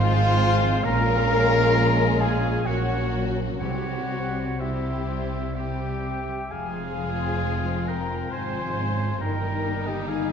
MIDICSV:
0, 0, Header, 1, 13, 480
1, 0, Start_track
1, 0, Key_signature, -4, "minor"
1, 0, Tempo, 952381
1, 427, Time_signature, 3, 2, 24, 8
1, 427, Tempo, 910470
1, 1387, Tempo, 960000
1, 3307, Tempo, 906344
1, 4267, Tempo, 882353
1, 5356, End_track
2, 0, Start_track
2, 0, Title_t, "Clarinet"
2, 0, Program_c, 0, 71
2, 0, Note_on_c, 0, 77, 127
2, 427, Note_off_c, 0, 77, 0
2, 430, Note_on_c, 0, 82, 127
2, 1144, Note_on_c, 0, 80, 108
2, 1152, Note_off_c, 0, 82, 0
2, 1382, Note_on_c, 0, 78, 104
2, 1390, Note_off_c, 0, 80, 0
2, 1712, Note_off_c, 0, 78, 0
2, 1850, Note_on_c, 0, 78, 97
2, 2353, Note_on_c, 0, 76, 71
2, 2360, Note_off_c, 0, 78, 0
2, 2829, Note_on_c, 0, 79, 84
2, 2837, Note_off_c, 0, 76, 0
2, 3307, Note_on_c, 0, 80, 103
2, 3315, Note_off_c, 0, 79, 0
2, 4028, Note_off_c, 0, 80, 0
2, 4031, Note_on_c, 0, 82, 85
2, 4258, Note_on_c, 0, 84, 107
2, 4266, Note_off_c, 0, 82, 0
2, 4745, Note_off_c, 0, 84, 0
2, 4749, Note_on_c, 0, 82, 91
2, 5120, Note_on_c, 0, 79, 83
2, 5128, Note_off_c, 0, 82, 0
2, 5226, Note_off_c, 0, 79, 0
2, 5229, Note_on_c, 0, 80, 86
2, 5356, Note_off_c, 0, 80, 0
2, 5356, End_track
3, 0, Start_track
3, 0, Title_t, "Flute"
3, 0, Program_c, 1, 73
3, 0, Note_on_c, 1, 77, 107
3, 427, Note_on_c, 1, 82, 118
3, 435, Note_off_c, 1, 77, 0
3, 1147, Note_on_c, 1, 80, 95
3, 1154, Note_off_c, 1, 82, 0
3, 1386, Note_off_c, 1, 80, 0
3, 1389, Note_on_c, 1, 78, 85
3, 1708, Note_off_c, 1, 78, 0
3, 1861, Note_on_c, 1, 78, 84
3, 2354, Note_on_c, 1, 76, 62
3, 2362, Note_off_c, 1, 78, 0
3, 2834, Note_on_c, 1, 79, 57
3, 2841, Note_off_c, 1, 76, 0
3, 3306, Note_off_c, 1, 79, 0
3, 3309, Note_on_c, 1, 80, 82
3, 3905, Note_off_c, 1, 80, 0
3, 4033, Note_on_c, 1, 82, 80
3, 4268, Note_off_c, 1, 82, 0
3, 4273, Note_on_c, 1, 84, 77
3, 4751, Note_on_c, 1, 82, 80
3, 4759, Note_off_c, 1, 84, 0
3, 5106, Note_on_c, 1, 79, 73
3, 5114, Note_off_c, 1, 82, 0
3, 5229, Note_on_c, 1, 80, 71
3, 5238, Note_off_c, 1, 79, 0
3, 5346, Note_off_c, 1, 80, 0
3, 5356, End_track
4, 0, Start_track
4, 0, Title_t, "Oboe"
4, 0, Program_c, 2, 68
4, 0, Note_on_c, 2, 72, 111
4, 425, Note_on_c, 2, 77, 127
4, 432, Note_off_c, 2, 72, 0
4, 1041, Note_off_c, 2, 77, 0
4, 1131, Note_on_c, 2, 77, 97
4, 1381, Note_on_c, 2, 73, 83
4, 1389, Note_off_c, 2, 77, 0
4, 1711, Note_off_c, 2, 73, 0
4, 1853, Note_on_c, 2, 73, 87
4, 2348, Note_on_c, 2, 72, 61
4, 2356, Note_off_c, 2, 73, 0
4, 2822, Note_off_c, 2, 72, 0
4, 2825, Note_on_c, 2, 76, 64
4, 3312, Note_on_c, 2, 77, 89
4, 3320, Note_off_c, 2, 76, 0
4, 4037, Note_on_c, 2, 79, 79
4, 4044, Note_off_c, 2, 77, 0
4, 4272, Note_on_c, 2, 80, 83
4, 4280, Note_off_c, 2, 79, 0
4, 4745, Note_off_c, 2, 80, 0
4, 4748, Note_on_c, 2, 79, 88
4, 5106, Note_on_c, 2, 75, 66
4, 5114, Note_off_c, 2, 79, 0
4, 5225, Note_on_c, 2, 77, 79
4, 5233, Note_off_c, 2, 75, 0
4, 5352, Note_off_c, 2, 77, 0
4, 5356, End_track
5, 0, Start_track
5, 0, Title_t, "Trumpet section"
5, 0, Program_c, 3, 61
5, 0, Note_on_c, 3, 65, 127
5, 427, Note_off_c, 3, 65, 0
5, 427, Note_on_c, 3, 70, 118
5, 1129, Note_off_c, 3, 70, 0
5, 1147, Note_on_c, 3, 68, 96
5, 1388, Note_off_c, 3, 68, 0
5, 1390, Note_on_c, 3, 66, 86
5, 1776, Note_off_c, 3, 66, 0
5, 1861, Note_on_c, 3, 66, 74
5, 2342, Note_off_c, 3, 66, 0
5, 2354, Note_on_c, 3, 64, 63
5, 2830, Note_on_c, 3, 67, 70
5, 2835, Note_off_c, 3, 64, 0
5, 3306, Note_off_c, 3, 67, 0
5, 3306, Note_on_c, 3, 68, 78
5, 4016, Note_off_c, 3, 68, 0
5, 4027, Note_on_c, 3, 70, 79
5, 4265, Note_on_c, 3, 72, 84
5, 4266, Note_off_c, 3, 70, 0
5, 4748, Note_off_c, 3, 72, 0
5, 4750, Note_on_c, 3, 70, 72
5, 5103, Note_off_c, 3, 70, 0
5, 5106, Note_on_c, 3, 67, 63
5, 5227, Note_off_c, 3, 67, 0
5, 5227, Note_on_c, 3, 68, 72
5, 5347, Note_off_c, 3, 68, 0
5, 5356, End_track
6, 0, Start_track
6, 0, Title_t, "Viola section"
6, 0, Program_c, 4, 48
6, 0, Note_on_c, 4, 65, 116
6, 422, Note_off_c, 4, 65, 0
6, 432, Note_on_c, 4, 70, 127
6, 1146, Note_off_c, 4, 70, 0
6, 1148, Note_on_c, 4, 68, 97
6, 1389, Note_off_c, 4, 68, 0
6, 1391, Note_on_c, 4, 66, 86
6, 1852, Note_off_c, 4, 66, 0
6, 1859, Note_on_c, 4, 66, 84
6, 2341, Note_off_c, 4, 66, 0
6, 2354, Note_on_c, 4, 64, 60
6, 2835, Note_off_c, 4, 64, 0
6, 2838, Note_on_c, 4, 67, 62
6, 3307, Note_on_c, 4, 68, 83
6, 3311, Note_off_c, 4, 67, 0
6, 4031, Note_on_c, 4, 70, 78
6, 4032, Note_off_c, 4, 68, 0
6, 4263, Note_off_c, 4, 70, 0
6, 4269, Note_on_c, 4, 72, 80
6, 4747, Note_on_c, 4, 70, 87
6, 4750, Note_off_c, 4, 72, 0
6, 5102, Note_off_c, 4, 70, 0
6, 5111, Note_on_c, 4, 67, 71
6, 5229, Note_on_c, 4, 68, 70
6, 5230, Note_off_c, 4, 67, 0
6, 5348, Note_off_c, 4, 68, 0
6, 5356, End_track
7, 0, Start_track
7, 0, Title_t, "Harp"
7, 0, Program_c, 5, 46
7, 0, Note_on_c, 5, 44, 94
7, 0, Note_on_c, 5, 53, 76
7, 0, Note_on_c, 5, 56, 71
7, 0, Note_on_c, 5, 65, 79
7, 0, Note_on_c, 5, 68, 84
7, 0, Note_on_c, 5, 72, 79
7, 0, Note_on_c, 5, 77, 81
7, 0, Note_on_c, 5, 80, 72
7, 0, Note_on_c, 5, 84, 86
7, 60, Note_off_c, 5, 72, 0
7, 66, Note_on_c, 5, 72, 77
7, 179, Note_off_c, 5, 65, 0
7, 185, Note_on_c, 5, 65, 73
7, 304, Note_off_c, 5, 53, 0
7, 310, Note_on_c, 5, 53, 71
7, 428, Note_on_c, 5, 46, 87
7, 446, Note_off_c, 5, 44, 0
7, 447, Note_off_c, 5, 84, 0
7, 448, Note_off_c, 5, 72, 0
7, 477, Note_off_c, 5, 80, 0
7, 543, Note_off_c, 5, 53, 0
7, 549, Note_on_c, 5, 53, 76
7, 663, Note_off_c, 5, 56, 0
7, 669, Note_on_c, 5, 56, 69
7, 781, Note_off_c, 5, 65, 0
7, 787, Note_on_c, 5, 65, 73
7, 905, Note_on_c, 5, 73, 71
7, 1019, Note_off_c, 5, 68, 0
7, 1025, Note_on_c, 5, 68, 68
7, 1138, Note_off_c, 5, 77, 0
7, 1144, Note_on_c, 5, 77, 62
7, 1266, Note_on_c, 5, 85, 65
7, 1382, Note_off_c, 5, 46, 0
7, 1388, Note_on_c, 5, 46, 65
7, 1406, Note_off_c, 5, 53, 0
7, 1406, Note_off_c, 5, 77, 0
7, 1407, Note_off_c, 5, 56, 0
7, 1407, Note_off_c, 5, 65, 0
7, 1407, Note_off_c, 5, 68, 0
7, 1508, Note_on_c, 5, 58, 50
7, 1622, Note_on_c, 5, 54, 54
7, 1741, Note_on_c, 5, 66, 50
7, 1860, Note_on_c, 5, 48, 59
7, 1879, Note_off_c, 5, 46, 0
7, 1879, Note_off_c, 5, 54, 0
7, 1879, Note_off_c, 5, 85, 0
7, 1880, Note_off_c, 5, 66, 0
7, 1880, Note_off_c, 5, 73, 0
7, 1881, Note_off_c, 5, 58, 0
7, 1979, Note_on_c, 5, 55, 48
7, 2102, Note_on_c, 5, 60, 49
7, 2225, Note_on_c, 5, 72, 46
7, 2351, Note_on_c, 5, 67, 49
7, 2468, Note_off_c, 5, 72, 0
7, 2474, Note_on_c, 5, 72, 50
7, 2593, Note_on_c, 5, 84, 48
7, 2714, Note_on_c, 5, 79, 48
7, 2827, Note_off_c, 5, 72, 0
7, 2833, Note_on_c, 5, 72, 45
7, 2947, Note_off_c, 5, 67, 0
7, 2953, Note_on_c, 5, 67, 48
7, 3066, Note_off_c, 5, 72, 0
7, 3072, Note_on_c, 5, 72, 43
7, 3185, Note_off_c, 5, 55, 0
7, 3191, Note_on_c, 5, 55, 42
7, 3306, Note_on_c, 5, 41, 65
7, 3328, Note_off_c, 5, 79, 0
7, 3329, Note_off_c, 5, 48, 0
7, 3329, Note_off_c, 5, 55, 0
7, 3329, Note_off_c, 5, 67, 0
7, 3430, Note_on_c, 5, 48, 46
7, 3550, Note_on_c, 5, 53, 47
7, 3668, Note_off_c, 5, 60, 0
7, 3674, Note_on_c, 5, 60, 50
7, 3788, Note_off_c, 5, 72, 0
7, 3794, Note_on_c, 5, 72, 49
7, 3911, Note_on_c, 5, 65, 56
7, 4025, Note_off_c, 5, 72, 0
7, 4031, Note_on_c, 5, 72, 51
7, 4143, Note_off_c, 5, 84, 0
7, 4149, Note_on_c, 5, 84, 54
7, 4260, Note_off_c, 5, 65, 0
7, 4267, Note_on_c, 5, 65, 53
7, 4380, Note_off_c, 5, 72, 0
7, 4386, Note_on_c, 5, 72, 49
7, 4501, Note_off_c, 5, 60, 0
7, 4507, Note_on_c, 5, 60, 47
7, 4621, Note_off_c, 5, 48, 0
7, 4628, Note_on_c, 5, 48, 43
7, 4747, Note_on_c, 5, 43, 63
7, 4767, Note_off_c, 5, 53, 0
7, 4768, Note_off_c, 5, 41, 0
7, 4768, Note_off_c, 5, 48, 0
7, 4768, Note_off_c, 5, 60, 0
7, 4768, Note_off_c, 5, 65, 0
7, 4768, Note_off_c, 5, 72, 0
7, 4768, Note_off_c, 5, 84, 0
7, 4868, Note_on_c, 5, 55, 46
7, 4991, Note_on_c, 5, 58, 49
7, 5110, Note_on_c, 5, 63, 58
7, 5227, Note_on_c, 5, 70, 55
7, 5339, Note_off_c, 5, 63, 0
7, 5356, Note_off_c, 5, 43, 0
7, 5356, Note_off_c, 5, 55, 0
7, 5356, Note_off_c, 5, 58, 0
7, 5356, Note_off_c, 5, 70, 0
7, 5356, End_track
8, 0, Start_track
8, 0, Title_t, "Violin section"
8, 0, Program_c, 6, 48
8, 0, Note_on_c, 6, 65, 100
8, 420, Note_off_c, 6, 65, 0
8, 428, Note_on_c, 6, 65, 99
8, 1368, Note_off_c, 6, 65, 0
8, 1385, Note_on_c, 6, 66, 77
8, 1849, Note_off_c, 6, 66, 0
8, 1862, Note_on_c, 6, 67, 64
8, 2349, Note_off_c, 6, 67, 0
8, 2355, Note_on_c, 6, 67, 63
8, 2826, Note_off_c, 6, 67, 0
8, 2835, Note_on_c, 6, 67, 53
8, 3200, Note_off_c, 6, 67, 0
8, 3315, Note_on_c, 6, 65, 73
8, 4250, Note_off_c, 6, 65, 0
8, 4269, Note_on_c, 6, 65, 55
8, 4741, Note_off_c, 6, 65, 0
8, 4753, Note_on_c, 6, 63, 74
8, 5356, Note_off_c, 6, 63, 0
8, 5356, End_track
9, 0, Start_track
9, 0, Title_t, "Violin section"
9, 0, Program_c, 7, 48
9, 0, Note_on_c, 7, 56, 108
9, 0, Note_on_c, 7, 60, 99
9, 417, Note_off_c, 7, 60, 0
9, 419, Note_off_c, 7, 56, 0
9, 429, Note_on_c, 7, 56, 96
9, 429, Note_on_c, 7, 61, 98
9, 1369, Note_off_c, 7, 56, 0
9, 1369, Note_off_c, 7, 61, 0
9, 1388, Note_on_c, 7, 58, 78
9, 1390, Note_on_c, 7, 61, 77
9, 1851, Note_off_c, 7, 61, 0
9, 1857, Note_on_c, 7, 55, 65
9, 1859, Note_on_c, 7, 60, 66
9, 1860, Note_off_c, 7, 58, 0
9, 2339, Note_off_c, 7, 55, 0
9, 2340, Note_off_c, 7, 60, 0
9, 2345, Note_on_c, 7, 55, 67
9, 2346, Note_on_c, 7, 60, 64
9, 2821, Note_off_c, 7, 55, 0
9, 2822, Note_off_c, 7, 60, 0
9, 2834, Note_on_c, 7, 55, 60
9, 2835, Note_on_c, 7, 60, 56
9, 3199, Note_off_c, 7, 55, 0
9, 3200, Note_off_c, 7, 60, 0
9, 3307, Note_on_c, 7, 56, 66
9, 3308, Note_on_c, 7, 60, 68
9, 4246, Note_off_c, 7, 56, 0
9, 4246, Note_off_c, 7, 60, 0
9, 4270, Note_on_c, 7, 56, 65
9, 4270, Note_on_c, 7, 60, 64
9, 4505, Note_off_c, 7, 60, 0
9, 4507, Note_on_c, 7, 61, 69
9, 4741, Note_off_c, 7, 56, 0
9, 4744, Note_off_c, 7, 61, 0
9, 4752, Note_on_c, 7, 63, 69
9, 4754, Note_on_c, 7, 55, 75
9, 5356, Note_off_c, 7, 55, 0
9, 5356, Note_off_c, 7, 63, 0
9, 5356, End_track
10, 0, Start_track
10, 0, Title_t, "French horn section"
10, 0, Program_c, 8, 60
10, 0, Note_on_c, 8, 56, 82
10, 0, Note_on_c, 8, 60, 95
10, 420, Note_off_c, 8, 60, 0
10, 421, Note_off_c, 8, 56, 0
10, 436, Note_on_c, 8, 61, 107
10, 438, Note_on_c, 8, 56, 101
10, 1373, Note_off_c, 8, 56, 0
10, 1377, Note_off_c, 8, 61, 0
10, 1380, Note_on_c, 8, 54, 71
10, 1384, Note_on_c, 8, 61, 70
10, 1774, Note_off_c, 8, 54, 0
10, 1774, Note_off_c, 8, 61, 0
10, 1859, Note_on_c, 8, 55, 65
10, 1863, Note_on_c, 8, 60, 60
10, 2342, Note_off_c, 8, 55, 0
10, 2348, Note_off_c, 8, 60, 0
10, 2352, Note_on_c, 8, 55, 59
10, 2354, Note_on_c, 8, 60, 63
10, 2825, Note_off_c, 8, 55, 0
10, 2826, Note_off_c, 8, 60, 0
10, 2837, Note_on_c, 8, 60, 51
10, 2839, Note_on_c, 8, 55, 45
10, 3141, Note_off_c, 8, 55, 0
10, 3141, Note_off_c, 8, 60, 0
10, 3316, Note_on_c, 8, 53, 71
10, 3318, Note_on_c, 8, 60, 67
10, 4732, Note_off_c, 8, 53, 0
10, 4732, Note_off_c, 8, 60, 0
10, 4757, Note_on_c, 8, 51, 73
10, 4758, Note_on_c, 8, 63, 70
10, 5356, Note_off_c, 8, 51, 0
10, 5356, Note_off_c, 8, 63, 0
10, 5356, End_track
11, 0, Start_track
11, 0, Title_t, "Timpani"
11, 0, Program_c, 10, 47
11, 1861, Note_on_c, 10, 48, 86
11, 2576, Note_off_c, 10, 48, 0
11, 5356, End_track
12, 0, Start_track
12, 0, Title_t, "Cello section"
12, 0, Program_c, 11, 48
12, 0, Note_on_c, 11, 44, 91
12, 429, Note_off_c, 11, 44, 0
12, 430, Note_on_c, 11, 46, 87
12, 1369, Note_off_c, 11, 46, 0
12, 1388, Note_on_c, 11, 46, 70
12, 1851, Note_off_c, 11, 46, 0
12, 1863, Note_on_c, 11, 48, 60
12, 3188, Note_off_c, 11, 48, 0
12, 3308, Note_on_c, 11, 41, 59
12, 4246, Note_off_c, 11, 41, 0
12, 4268, Note_on_c, 11, 44, 60
12, 4750, Note_off_c, 11, 44, 0
12, 4750, Note_on_c, 11, 43, 61
12, 5356, Note_off_c, 11, 43, 0
12, 5356, End_track
13, 0, Start_track
13, 0, Title_t, "Double bass section"
13, 0, Program_c, 12, 48
13, 0, Note_on_c, 12, 32, 105
13, 430, Note_off_c, 12, 32, 0
13, 430, Note_on_c, 12, 34, 96
13, 1369, Note_off_c, 12, 34, 0
13, 1384, Note_on_c, 12, 34, 75
13, 1849, Note_off_c, 12, 34, 0
13, 1858, Note_on_c, 12, 36, 62
13, 3186, Note_off_c, 12, 36, 0
13, 3306, Note_on_c, 12, 29, 75
13, 4245, Note_off_c, 12, 29, 0
13, 4266, Note_on_c, 12, 32, 64
13, 4747, Note_on_c, 12, 31, 72
13, 4749, Note_off_c, 12, 32, 0
13, 5356, Note_off_c, 12, 31, 0
13, 5356, End_track
0, 0, End_of_file